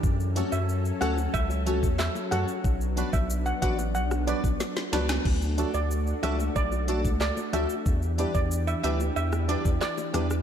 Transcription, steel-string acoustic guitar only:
X:1
M:4/4
L:1/8
Q:1/4=92
K:Bm
V:1 name="Steel-string acoustic guitar"
z [CFAc] z [CFAc] z [CFAc] z [CFAc] | z [DFBd] z [DFBd] z [DFBd] z [DFBd] | z [DFAd] z [DFAd] z [DFAd] z [DFAd] | z [DGBd] z [DGBd] z [DGBd] z [DGBd] |]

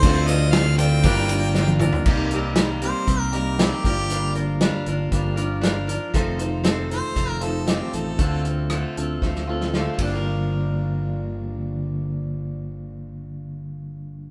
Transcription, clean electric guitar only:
X:1
M:4/4
L:1/8
Q:1/4=117
K:Gm
V:1 name="Clean electric guitar"
[D,F,CDA]4 [G,,D,F,B,DG]4 | [C,G,B,EG]4- [C,G,B,EG] [C,G,B,EG] [C,G,B,EG] [G,,D,F,B,DG]- | [G,,D,F,B,DG]4 [G,,D,F,B,DG] [G,,D,F,B,DG]2 z | [F,,C,E,A,CF]4- [F,,C,E,A,CF] [F,,C,E,A,CF] [F,,C,E,A,CF]2 |
[D,A,CF]4- [D,A,CF] [D,A,CF] [D,A,CF] [G,,D,F,B,DG]- | [G,,D,F,B,DG]8- | [G,,D,F,B,DG]8 |]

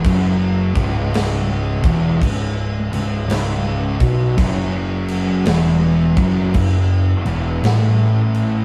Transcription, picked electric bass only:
X:1
M:4/4
L:1/8
Q:"Swing" 1/4=55
K:C#m
V:1 name="Picked electric bass" clef=bass
F,,, C,,,2 E,,, C,,, C,,, C,,, B,,, | F,,,2 E,,, F,,, F,,, E,,, A,,,2 |]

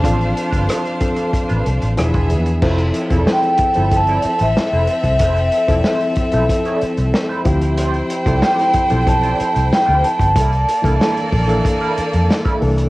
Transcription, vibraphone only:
X:1
M:4/4
L:1/16
Q:1/4=93
K:Flyd
V:1 name="Vibraphone"
a12 z4 | z4 g4 a3 e3 e2- | e8- e2 z6 | z4 g4 a4 g2 a2- |
a12 z4 |]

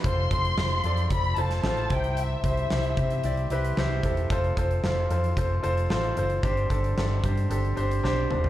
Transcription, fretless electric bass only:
X:1
M:4/4
L:1/8
Q:1/4=113
K:C
V:1 name="Fretless electric bass" clef=bass
F,,, F,,, F,,, F,, F,,, F,,, A,,, C,,- | C,, C,, C,, C, C,, C,, C,, E,,, | F,,, F,,, F,,, F,, F,,, F,,, A,,, ^F,,, | G,,, G,,, G,,, G,, G,,, G,,, B,,, E,,, |]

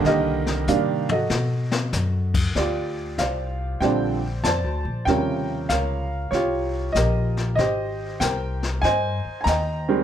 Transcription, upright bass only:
X:1
M:4/4
L:1/8
Q:"Swing" 1/4=96
K:Bb
V:1 name="Upright bass" clef=bass
C,,2 C,2 =B,,2 ^F,,2 | D,,2 C,,2 B,,,2 (3F,, D,, B,,, | E,,2 _D,,2 C,,2 B,,,2 | _A,,,2 C,,2 G,, z E,,2 |]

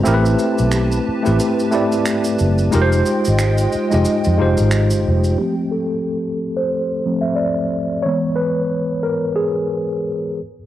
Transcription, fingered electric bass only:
X:1
M:4/4
L:1/16
Q:"Swing 16ths" 1/4=90
K:F
V:1 name="Fingered electric bass" clef=bass
A,,,2 z =B,,,3 z A,,, z6 ^F,,,2 | F,,,2 z _A,,,3 z F,,, z F,, F,,, A,,,2 G,,, F,,,2 | z16 | z16 |]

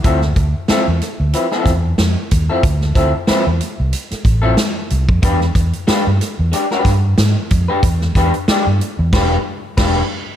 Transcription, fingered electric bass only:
X:1
M:4/4
L:1/16
Q:"Swing 16ths" 1/4=92
K:Dmix
V:1 name="Fingered electric bass" clef=bass
D,,2 D,, z2 E,, z D,, z2 E,,2 =F,, z ^D,, z | D,,2 D,, z2 E,, z C,, z2 A,,,2 z2 C,, =F,, | E,,2 E,, z2 G,, z E,, z2 G,,2 ^G,, z =F,, z | E,,2 E,, z2 G,, z E,, E,,,2 z2 E,,,2 z2 |]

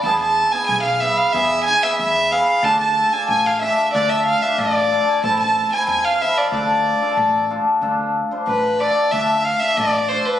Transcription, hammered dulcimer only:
X:1
M:2/4
L:1/16
Q:1/4=92
K:none
V:1 name="Hammered dulcimer"
[B,E^G]2 z [B,EG] z2 [B,EB] z | [B,E^G]2 z [B,EB] z2 [B,EG] z | [DFA]2 z [DFA] z2 [DFA] z | [DFA]2 z [DFA] z2 [DFA] z |
[CEA]2 z [CEA] z2 [CEA] z | [DFA]2 z [DFA] z2 [DFA] z | [DFA]2 z [DFc] z2 [DFA] z | [DFA]2 z [DFA] z2 [DFA] z |]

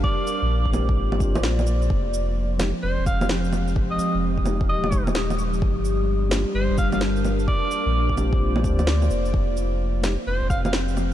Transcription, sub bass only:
X:1
M:4/4
L:1/16
Q:"Swing 16ths" 1/4=129
K:Fdor
V:1 name="Sub bass" clef=bass
z3 B,,,4- B,,, A,,,4 B,,,4 | F,,,6- F,,, z F,,, F,,,6- F,,,- | F,,,2 z F,,,4- F,,, E,,,8 | G,,,6- G,,, z G,,, G,,,6- G,,, |
z3 B,,,6- B,,, D,,4 F,,,2 | F,,,6- F,,, z F,,, F,,,6- F,,, |]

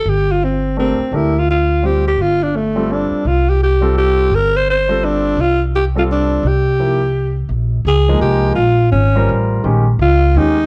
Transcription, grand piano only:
X:1
M:3/4
L:1/8
Q:"Swing" 1/4=169
K:Cmix
V:1 name="Grand piano"
z4 [A,DGB] z | [A,DGB] z3 [G,CFc] z | z3 [G,CFA]3 | z3 [G,CFA]3 |
z3 [G,CFA]3 | z3 [G,CFA]3 | z2 [F,B,EG] z3 | [K:Bbdor] z3 [F,A,B,E]3 |
z3 [G,FBc]3 | [E,A,DG] z3 [E,A,DG] z |]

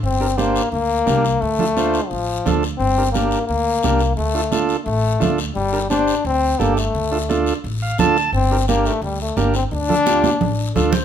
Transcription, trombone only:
X:1
M:4/4
L:1/8
Q:1/4=174
K:Gdor
V:1 name="Trombone"
C2 B,2 B,4 | A,4 F,3 z | C2 B,2 B,4 | A,2 z2 A,3 z |
G,2 D2 C2 B, A,- | A,3 z4 z | C2 B, A, G, A, B, C | D6 z2 |]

